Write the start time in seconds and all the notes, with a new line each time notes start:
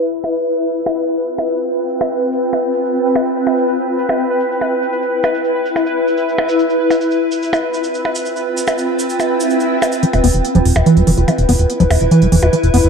Already playing: B4 E5
0.03 F4, cabasa
0.24 percussion blips, cabasa
0.34 G5, cabasa
0.39 C4
0.44 cabasa
0.66 cabasa
0.76 cabasa
0.86 percussion blips, cabasa
1.08 cabasa
1.17 cabasa
1.28 cabasa
1.38 percussion blips
1.49 cabasa
1.59 cabasa
1.70 cabasa
1.89 cabasa
2.00 percussion blips, cabasa
2.12 cabasa
2.32 cabasa
2.43 cabasa
2.53 percussion blips, cabasa
2.73 cabasa
2.85 cabasa
2.95 cabasa
3.15 percussion blips, cabasa
3.25 cabasa
3.36 E4, cabasa
3.47 percussion blips
3.58 cabasa
3.67 B4, cabasa
3.78 cabasa
3.98 E5, cabasa
4.09 percussion blips, cabasa
4.20 cabasa
4.40 cabasa
4.52 cabasa
4.61 percussion blips, cabasa
4.83 cabasa
4.93 cabasa
5.02 cabasa
5.23 percussion blips, cabasa
5.35 cabasa
5.44 cabasa
5.66 cabasa
5.76 percussion blips, cabasa
5.86 cabasa
6.08 cabasa
6.17 cabasa
6.29 cabasa
6.38 percussion blips
6.49 cabasa
6.59 cabasa
6.70 F4, cabasa
6.90 percussion blips, cabasa
7.01 C4, cabasa
7.11 cabasa
7.20 G5
7.32 cabasa
7.43 cabasa
7.53 percussion blips, cabasa
7.74 cabasa
7.84 cabasa
7.94 cabasa
8.05 percussion blips
8.15 cabasa
8.26 cabasa
8.36 cabasa
8.57 cabasa
8.67 percussion blips, cabasa
8.78 cabasa
8.99 cabasa
9.10 cabasa
9.20 swell, percussion blips, cabasa
9.40 cabasa
9.50 cabasa
9.60 cabasa
9.82 percussion blips, cabasa
9.92 cabasa
10.03 E3 E4 B4, closed hi-hat
10.13 E1, closed hi-hat, percussion blips
10.24 E1 B3, open hi-hat
10.32 E1 B4, closed hi-hat
10.45 closed hi-hat
10.55 E1 F3, closed hi-hat
10.65 E1, open hi-hat
10.76 E1, closed hi-hat, percussion blips
10.86 E3 E5, closed hi-hat
10.97 E1 G3, closed hi-hat
11.07 F1 E3, open hi-hat
11.17 E1 F4, closed hi-hat
11.28 E3, closed hi-hat, percussion blips
11.38 E1, closed hi-hat
11.49 E1 B3, open hi-hat
11.59 E1, closed hi-hat
11.70 closed hi-hat
11.80 E1 F3, closed hi-hat
11.90 E1, open hi-hat, percussion blips
12.01 E1, closed hi-hat
12.11 E3, closed hi-hat
12.22 E1 G3, closed hi-hat
12.32 E1 E3, open hi-hat
12.43 E1 F4, closed hi-hat, percussion blips
12.53 E3, closed hi-hat
12.63 E1, closed hi-hat
12.74 F1 B3, open hi-hat
12.84 E1, closed hi-hat